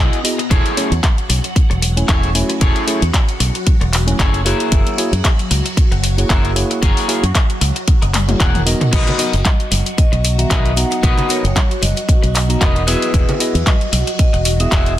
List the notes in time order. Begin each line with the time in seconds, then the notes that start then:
Already playing: B3 E4 A#5
0.00 F#4 G#4 D#5
0.13 closed hi-hat
0.24 B3 E4 F#4 G#4 D#5, open hi-hat
0.38 muted clean electric guitar stroke, closed hi-hat
0.50 E1 F#3 E4 F#4 G#4 A4 C#5, kick, closed hi-hat
0.66 closed hi-hat
0.76 A3 C#4 E4 G#4 C#5, open hi-hat
0.91 E2, closed hi-hat
1.03 kick, clap, closed hi-hat
1.18 closed hi-hat
1.29 B1, muted clean electric guitar stroke, open hi-hat
1.44 muted clean electric guitar stroke, closed hi-hat
1.55 muted clean electric guitar stroke, muted fingered electric bass stroke, kick, closed hi-hat
1.70 E1, muted clean electric guitar stroke, closed hi-hat
1.82 muted clean electric guitar stroke, open hi-hat
1.96 A3 C#4 E4 C#5 G#5, closed hi-hat
2.08 E1 E4 G#4 A4 C#5, kick, clap, closed hi-hat
2.23 closed hi-hat
2.34 A3 C#4 E4 C#5 G#5, open hi-hat
2.49 muted clean electric guitar stroke, closed hi-hat
2.61 E1 E4 G#4 A4 C#5, kick, closed hi-hat
2.76 closed hi-hat
2.87 A3 C#4 E4 G#4 C#5, open hi-hat
3.02 E2, closed hi-hat
3.14 kick, clap, closed hi-hat
3.29 closed hi-hat
3.40 B1, muted clean electric guitar stroke, open hi-hat
3.55 muted clean electric guitar stroke, closed hi-hat
3.66 muted clean electric guitar stroke, kick, closed hi-hat
3.81 E1, muted clean electric guitar stroke, closed hi-hat
3.93 muted clean electric guitar stroke, clap, open hi-hat
4.07 A3 C#4 E4 C#5 G#5, closed hi-hat
4.19 F#1 E4 G#4 A4 C#5, kick, clap, closed hi-hat
4.34 closed hi-hat
4.45 A#3 E4 F#4 G#4 A#4 C#5 E5, open hi-hat
4.60 closed hi-hat
4.72 F#1, kick, closed hi-hat
4.87 closed hi-hat
4.97 A#3 E4 F#4 G#4 C#5, open hi-hat
5.12 F#2, closed hi-hat
5.25 kick, clap, closed hi-hat
5.39 closed hi-hat
5.51 C#2, muted clean electric guitar stroke, open hi-hat
5.65 muted clean electric guitar stroke, closed hi-hat
5.77 muted clean electric guitar stroke, muted fingered electric bass stroke, kick, closed hi-hat
5.91 F#1, muted clean electric guitar stroke, closed hi-hat
6.03 muted clean electric guitar stroke, open hi-hat
6.17 A#3 E4 F#4 G#4 C#5, closed hi-hat
6.30 F#1 F#4 G#4 A#4 E5, kick, clap, closed hi-hat
6.45 closed hi-hat
6.55 A#3 E4 F#4 G#4 C#5, open hi-hat
6.70 muted clean electric guitar stroke, closed hi-hat
6.82 F#1 F#4 G#4 A#4 C#5, kick, closed hi-hat
6.97 open hi-hat
7.08 A#3 E4 F#4 G#4 C#5, open hi-hat
7.23 F#2, closed hi-hat
7.35 kick, clap, closed hi-hat
7.50 closed hi-hat
7.61 C#2, muted clean electric guitar stroke, open hi-hat
7.76 muted clean electric guitar stroke, closed hi-hat
7.87 muted clean electric guitar stroke, kick, closed hi-hat
8.02 F#1, muted clean electric guitar stroke, closed hi-hat
8.13 muted clean electric guitar stroke, clap, open hi-hat, high tom
8.28 A#3 E4 F#4 G#4 C#5, closed hi-hat, high tom
8.40 E1 F#4 G#4 A#4 F#5, kick, clap, closed hi-hat, mid tom
8.55 closed hi-hat, mid tom
8.65 B3 D#4 F#4 A#4 D#5, open hi-hat
8.81 muted clean electric guitar stroke, closed hi-hat, mid tom
8.92 B1 F#3 F#4 A#4 B4 D#5, kick, closed hi-hat, crash, shaker
9.07 closed hi-hat, low conga
9.18 B3 D#4 F#4 A#4 D#5, open hi-hat, shaker
9.33 F#1, closed hi-hat, shaker
9.45 D#5, kick, clap, closed hi-hat, high conga, shaker
9.60 closed hi-hat
9.71 F#1, muted clean electric guitar stroke, open hi-hat, high conga, shaker
9.86 muted clean electric guitar stroke, closed hi-hat, shaker
9.97 D#5, muted clean electric guitar stroke, muted fingered electric bass stroke, kick, closed hi-hat, shaker
10.12 B1, muted clean electric guitar stroke, closed hi-hat
10.24 muted clean electric guitar stroke, open hi-hat, shaker
10.38 D#3 B3 F#4 E5 F#5 A#5, closed hi-hat, shaker
10.50 B1 F#4 A#4 B4 D#5, kick, clap, closed hi-hat, shaker
10.66 closed hi-hat
10.76 B3 D#4 F#4 D#5 F#5 A#5, open hi-hat, shaker
10.91 muted clean electric guitar stroke, closed hi-hat, shaker
11.03 B1 F#4 A#4 B4 D#5, kick, closed hi-hat, shaker
11.18 closed hi-hat, low conga
11.29 B3 D#4 F#4 A#4 C#5 D#5, open hi-hat, shaker
11.44 F#1, closed hi-hat, shaker
11.56 kick, clap, closed hi-hat, high conga, shaker
11.71 closed hi-hat
11.82 F#1 D#5, muted clean electric guitar stroke, open hi-hat, high conga, shaker
11.96 muted clean electric guitar stroke, closed hi-hat, shaker
12.08 muted clean electric guitar stroke, kick, closed hi-hat, shaker
12.22 B1, muted clean electric guitar stroke, closed hi-hat
12.34 muted clean electric guitar stroke, clap, open hi-hat, shaker
12.49 B3 D#4 F#4 D#5 A#5, closed hi-hat, shaker
12.60 E1 F#4 A#4 B4 D#5, kick, clap, closed hi-hat, shaker
12.76 closed hi-hat
12.87 B3 E4 F#4 G#4 B4 D#5 E5 D#6, open hi-hat, shaker
13.02 closed hi-hat, shaker
13.14 E1, kick, closed hi-hat, shaker
13.29 closed hi-hat, low conga
13.40 B3 E4 F#4 G#4 D#5, open hi-hat, shaker
13.55 E2, closed hi-hat, shaker
13.67 D#5, kick, clap, closed hi-hat, high conga, shaker
13.81 closed hi-hat
13.92 B1, muted clean electric guitar stroke, open hi-hat, high conga, shaker
14.07 muted clean electric guitar stroke, closed hi-hat, shaker
14.19 D#5, muted clean electric guitar stroke, muted fingered electric bass stroke, kick, closed hi-hat, shaker
14.33 E1, muted clean electric guitar stroke, closed hi-hat
14.45 muted clean electric guitar stroke, open hi-hat, shaker
14.60 B3 E4 F#4 G#4 E5 D#6, closed hi-hat, shaker
14.72 E1 F#4 G#4 D#5 E5, kick, clap, closed hi-hat, shaker
14.86 closed hi-hat